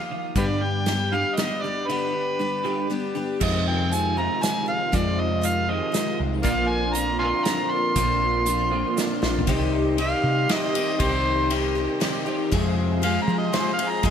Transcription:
Already playing: D#3 A#3 F4 G4 F5 D#6
0.11 D#3 F3
0.36 G2 D3 G3 B3 D4 G4 B4 D5 G5 D6, kick, closed hi-hat
0.61 G2 D3 G5
0.86 G2 D3 G3 B3 D4 G4, snare, closed hi-hat
1.12 G2 D3 G3 B3 D4 G4 F5
1.36 G2 D3 G3 B3 D4 D#5, snare, closed hi-hat
1.41 G4
1.62 G2 D3 B3 D4 G4 D5
1.66 G3
1.88 G2 D3 G3 B3 D4 G4 B4
2.14 G2 D3
2.39 G2 D3 G3 B3 D4 G4
2.64 G2 D3 G3 B3 D4 G4
2.88 G2 D3 G3 B3 D4
2.92 G4
3.14 G2 D3 G3 B3 D4 G4
3.40 F2 C3 D#3 G#3 C4 F4 D#5, kick, crash
3.68 G5
3.92 D#3 G#3 C4 F4 G#5, closed hi-hat
4.17 F2 C3 D#3 G#3 C4 F4 A#5
4.41 D#3 G#3 C4 F4 G#5, snare, closed hi-hat
4.66 D#3 G#3 C4 F4 F5
4.92 F2 C3 D#3 G#3 C4 F4 D5, kick, closed hi-hat
5.21 D#5
5.41 D#3 G#3 C4 F4, closed hi-hat
5.46 F5
5.68 F2 C3 D#3 G#3 C4 F4 D#5
5.92 D#3 G#3 C4 F4, snare, closed hi-hat
6.20 C2
6.43 A#1 A#2 D3 F3 A#3 C4 D4 F4 A#4 D5 F5 C6, kick, closed hi-hat
6.69 G#5
6.93 F3 C4 D4 F4 A#5, closed hi-hat
7.19 A#2 D3 A#3 C4 F4 F5 G#5 C6
7.45 F3 C4 D4 F4 A#5, snare, closed hi-hat
7.71 C6
7.96 A#1 A#2 D3 F3 A#3 C4 D4 F4, kick, closed hi-hat
8.46 F3 C4 D4 F4, closed hi-hat
8.71 A#2 D3 A#3 C4 F4
8.97 F3 C4 D4 F4, snare, closed hi-hat
9.22 A#1 C4 D4 F4, snare
9.39 floor tom
9.47 C2 C3 D#3 G3 C4 D#4 G4 D#5 C6, kick, ride
9.97 C3 D#3 G3 C4 D#4 F5, ride
10.01 G4
10.24 C3
10.49 D#3 G3 C4 D#4 G4 D#5, snare, ride
10.64 D#5
10.75 G3 C4 D#4 G4, ride
11.00 C2 C3 D#3 G3 C4 D#4 G4 C5, kick, ride
11.49 C3 D#3 G3 C4 D#4 G4, ride
11.75 C4 D#4 G4
12.00 D#3 G3 C4 D#4 G4, snare, ride
12.26 G3 C4 D#4 G4
12.52 F2 C3 F3 G#3 C4 G#4 F5, kick, ride
13.02 F2 C3 F3 G#3 C4 G#4 F5, ride
13.22 A#5
13.28 F3 G#3 C4 G#4
13.38 D#5
13.53 F3 G#3 C4 G#4 C5, snare, ride
13.73 F5
13.79 F3 G#3 C4 G#4, ride
13.90 A#5
14.03 F2 C3 F3 G#3 C4 G#4 D#5, kick, ride

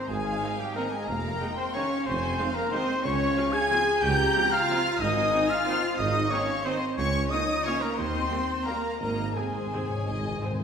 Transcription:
Already playing: C4 C5 C6
0.04 A#5
0.09 G#1 G#3 G#4 F5 G#5
0.42 D#3 C4 D#4
0.58 G3 G4 G5
0.76 D#3 A#3 C4 D#4 A#4 D#5 A#5
0.92 G#3 G#4 G#5
1.07 F1 A#3 A#4 F5 A#5
1.41 D#3 G#3 D#4 G5
1.56 C4 C5 C6
1.74 D#3 G#3 C#4 D#4 C#5 F5 C#6
2.06 F1 C4 C5 G#5 C6
2.38 D#3 G#3 D#4 F5
2.54 A#3 A#4 A#5
2.70 D#3 G#3 C4 D#4 C5 D#5 C6
3.02 C#2 C#4 C#5 C#6
3.35 F3 C4 F4 F5
3.53 G#4 G#5 G#6
3.70 F3 C4 F4 G#5
4.01 C#2 G4 G5 A#5 G6
4.35 F3 C4 F4
4.51 F4 F5 F6
4.69 F3 C4 F4
5.00 G#1 D#4 D#5 G#5 D#6
5.34 D#3 C4 D#4
5.50 F4 F5 F6
5.66 D#3 C4 D#4 C5
5.97 G#1 D#4 D#5 D#6
6.30 D#3 C4 C#4 D#4 C#5 F5 C#6
6.64 D#3 C4 D#4 C5 D#5 C6
6.96 C#2 C#4 C#5 C#6
7.30 F3 A#3 D#4 F4 D#5 D#6
7.64 F3 A#3 C#4 F4 C#5 F5 C#6
7.81 A#3 A#4 A#5
7.96 D#2 C4 C5 D#5 C6
8.29 G3 A#3 G4 G5
8.64 G3 A#3 G4 A#4 F5 A#5
8.99 G#1 G#2 A#3 A#4 D#5 A#5
9.08 G#2
9.16 G#2
9.24 G#2
9.32 G#2 D#3 G#3 C4 G#4 C5 G#5
9.41 G#2
9.50 G#2
9.58 G#2
9.66 G#2
9.73 G#2 D#3 C4 G#4
9.83 G#2
9.90 G#2 C#5
9.98 G#2
10.06 G#1 G#2 D#5
10.13 G#2
10.20 G#2
10.28 G#2
10.35 G#2
10.42 G#2 D#3 C4 G#4 C5
10.51 G#2
10.59 G#2

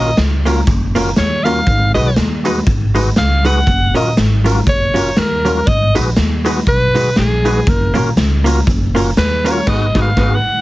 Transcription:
Already playing: A#1 F4 F#4 A#4 D#5
0.17 C#2, snare, closed hi-hat
0.45 A#3 C#4 F4 F#4 A#4, closed hi-hat
0.67 F#1, kick, closed hi-hat
0.95 A#3 C#4 F4 F#4 A#4, closed hi-hat
1.16 D#2 F#4 A#4 C#5, snare, closed hi-hat
1.44 A#3 C#4 F4 F#4 A#4 F5, closed hi-hat
1.66 G#1, kick, closed hi-hat
1.94 B1 G#3 D#4 F#4 G#4 B4 D#5, closed hi-hat
2.16 D#2, snare, closed hi-hat
2.44 G#3 D#4 F#4 G#4 B4, closed hi-hat
2.67 G#1, kick, closed hi-hat
2.94 G#3 D#4 F#4 G#4 B4, closed hi-hat
3.16 C#2 G#4 B4 F5, snare, closed hi-hat
3.44 G#3 D#4 F#4 G#4 B4 F#5, closed hi-hat
3.67 F#1, kick, closed hi-hat
3.94 A#1 F#3 C#4 F4 F#4 A#4 D#5, closed hi-hat
4.17 G#1, snare, closed hi-hat
4.44 F#3 C#4 F4 F#4 A#4, closed hi-hat
4.67 F#1 C#5, kick, closed hi-hat
4.94 F#3 C#4 F4 F#4 A#4, closed hi-hat
5.17 D#2 F#4 A#4, snare, closed hi-hat
5.44 F#3 C#4 F4 F#4 A#4, closed hi-hat
5.67 G#1 D#5, kick, closed hi-hat
5.94 A#1 G#3 D#4 F#4 G#4 B4, closed hi-hat
6.16 D#2, snare, closed hi-hat
6.44 G#3 D#4 F#4 G#4 B4, closed hi-hat
6.67 B1 B4, kick, closed hi-hat
6.95 G#3 D#4 F#4 G#4 B4, closed hi-hat
7.16 A#1 G#4 B4, snare, closed hi-hat
7.44 G#3 D#4 F#4 G#4 B4, closed hi-hat
7.67 F#1 A#4, kick, closed hi-hat
7.94 A#1 A#3 C#4 F4 F#4 A#4, closed hi-hat
8.17 C#2, snare, closed hi-hat
8.44 A#3 C#4 F4 F#4 A#4, closed hi-hat
8.67 F#1, kick, closed hi-hat
8.95 A#3 C#4 F4 F#4 A#4, closed hi-hat
9.17 D#2 F#4 A#4 B4, snare, closed hi-hat
9.44 A#3 C#4 F4 F#4 A#4, closed hi-hat
9.52 C#5
9.67 G#1 B3 D#4 F#4 G#4 B4 D#5, kick, snare, crash
9.95 G#1 B3 D#4 F#4 G#4 B4, kick, snare
10.02 F5
10.17 G#1 B3 D#4 F#4 G#4 B4, kick, snare
10.35 F#5

